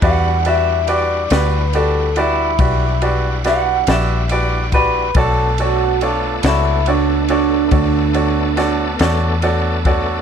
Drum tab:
RD |xxxxxxxxxxxx|xxxxxxxxxxxx|
SD |---o----oo--|---o----oo--|
BD |o-----o----o|o-----o----o|